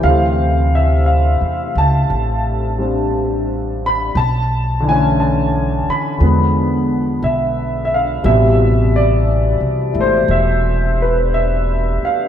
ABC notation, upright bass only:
X:1
M:4/4
L:1/8
Q:"Swing" 1/4=58
K:Am
V:1 name="Upright bass" clef=bass
D,,2- (3D,, E,, ^C,, A,,,4 | B,,,3 z E,,2 B,,,2 | A,,,2- (3A,,, C,, ^G,,, E,,,3 z |]